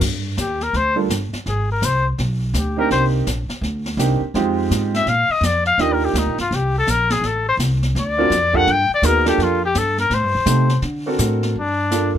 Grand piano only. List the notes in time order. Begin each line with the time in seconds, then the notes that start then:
0.95 G3 A#3 D4 F4 A4
2.77 A#3 C4 D4 D#4 G4
3.98 A#3 C4 D4 D#4 G4
4.35 G#3 C4 D#4 F4 G4
5.79 A#3 D4 D#4 F4 G4
8.18 C4 D4 F4 F#4 A#4
8.53 A#3 D4 F4 G4 A4
9.03 B3 D#4 F#4 G#4 A#4
9.25 A#3 D4 F4 G4 A4
10.46 A3 C4 D#4 G4 A4
11.06 C4 D4 F#4 A4 A#4
11.91 A#3 D4 F4 A4